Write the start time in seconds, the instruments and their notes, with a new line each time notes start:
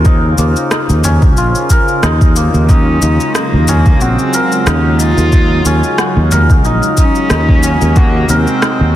Already playing: fretless electric bass D#2, analog synth pad C#3 F4 C5, santur A#3 C#4 F4 A#4, singing bowl F5
0.05 santur D#4, kick, shaker
0.38 fretless electric bass D#2, santur A#3, shaker
0.56 shaker
0.71 santur D#4, cross-stick, shaker
0.89 fretless electric bass D#2, shaker
1.04 santur C#4, frame drum, shaker
1.22 kick, shaker
1.37 fretless electric bass A#1, santur F4, shaker
1.55 shaker
1.70 santur A#4, kick, shaker
1.88 shaker
2.03 fretless electric bass D#2, santur D#4, cross-stick, shaker
2.21 kick, shaker
2.36 santur A#3, shaker
2.54 fretless electric bass D#2, shaker
2.69 analog synth pad F#3 G#3, cello C#4, santur D#4, kick, shaker
3.02 fretless electric bass D#2, santur D#4, shaker
3.20 shaker
3.35 cello A#3, santur D#4, cross-stick, shaker
3.53 fretless electric bass D#2
3.68 santur C#4, frame drum, shaker
3.86 kick, shaker
4.01 fretless electric bass A#1, cello C4, santur F#4, shaker
4.19 shaker
4.34 santur A#4, shaker
4.52 shaker
4.66 fretless electric bass D#2, cello C#4, santur D#4, cross-stick, shaker
5.00 santur D#4, cello F4, shaker
5.18 fretless electric bass D#2, shaker
5.33 santur D#4, kick, shaker
5.65 fretless electric bass D#2, santur C#4, shaker
5.84 shaker
5.98 santur F#4, cross-stick, shaker
6.17 fretless electric bass D#2
6.32 santur A#4, frame drum, shaker
6.50 kick, shaker
6.64 fretless electric bass A#1, santur D#4, shaker
6.83 shaker
6.97 cello C#4, santur D#4, kick, shaker
7.15 shaker
7.30 fretless electric bass D#2, santur D#4, cross-stick, shaker
7.49 kick
7.63 santur C#4, shaker
7.82 fretless electric bass D#2, shaker
7.96 analog synth pad C3 G#3 F#4, cello A#3, santur F#4, kick, shaker
8.29 fretless electric bass D#2, cello C4, santur A#4, shaker
8.47 shaker
8.62 santur D#4, cross-stick, shaker
8.81 fretless electric bass D#2